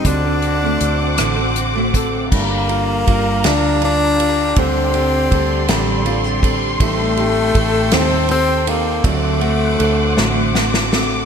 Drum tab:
CC |------------|x-----------|------------|------------|
RD |------------|--x-x-x-x-x-|x-x-x-x-x-x-|x-x-x-x-x-x-|
HH |x-x-x-x-x-x-|------------|------------|------------|
SD |------r-----|------o-----|------o-----|------o-----|
BD |o---------o-|o---o-------|o---o-----o-|o---o-------|

CC |------------|
RD |x-x-x-------|
HH |------------|
SD |------o-ooo-|
BD |o-----------|